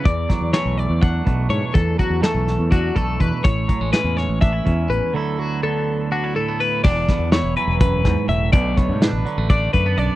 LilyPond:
<<
  \new Staff \with { instrumentName = "Clean electric guitar" } { \time 7/8 \key e \mixolydian \tempo 4 = 124 d''4 cis''8 d''8 fis''4 cis''8 | a'8 fis'8 a'4 fis'8 a'8 b'8 | cis''4 b'8 cis''8 e''4 b'8 | a'8 fis'8 a'4 fis'8 a'8 b'8 |
d''4 cis''8 b'8 b'4 e''8 | d''8 cis''8 b'4 d''8 b'8 d''8 | }
  \new Staff \with { instrumentName = "Clean electric guitar" } { \clef bass \time 7/8 \key e \mixolydian << { r8 fis8 a4 d'8 a4~ | a8 fis8 a4 d'8 a4~ | a8 fis16 gis16 cis'4 d'16 e'16 cis'4 | <d fis b e'>8 fis8 b4 d'16 e'16 a16 b8. |
d'8 b8 e'8 fis2 | <d a b d'>8 b8 d'8 fis16 a16 d'8 a16 b16 d'8 | } \\ { e,4 e4. b,4 | e,4 e4. b,4 | a,4 e4. e,4 | d,4 d4. a,4 |
e,4. e8 fis,8 gis,8 a,8 | b,4. d4. fis,8 | } >> }
  \new Staff \with { instrumentName = "Fingered electric bass" } { \clef bass \time 7/8 \key e \mixolydian e,8 r16 e,16 r16 b,,8 e,8. b,,8 gis,16 r16 | e,8 r16 e,16 r16 b,,8 e,8. b,,8 e,16 r16 | a,,8 r16 a,,16 r16 e,8 a,,8. e,8 a,,16 r16 | r2. r8 |
e,,8 r16 e,8 e,,16 r16 e,,8. e,16 r16 e,,8 | b,,8. gis,8 a,,16 r16 a,,8. fis,8 b,,16 r16 | }
  \new DrumStaff \with { instrumentName = "Drums" } \drummode { \time 7/8 <hh bd>8 <hh bd sn>8 <hh sn>8 hh8 <hh bd>8 <hh bd>8 hh8 | <hh bd>8 <hh bd>8 <hh sn>8 <hh sn>8 <hh bd>8 <hh bd>8 <hh bd>8 | <hh bd>8 <hh bd>8 <hh sn>8 <hh sn>8 <hh bd>8 <hh bd>8 hh8 | r4 r4 r4. |
<cymc bd>8 <hh bd sn>8 <hh sn>8 hh8 <hh bd>8 <hh bd sn>8 hh8 | <hh bd>8 <hh bd sn>8 <hh sn>8 hh8 <hh bd>8 <hh bd>8 hh8 | }
>>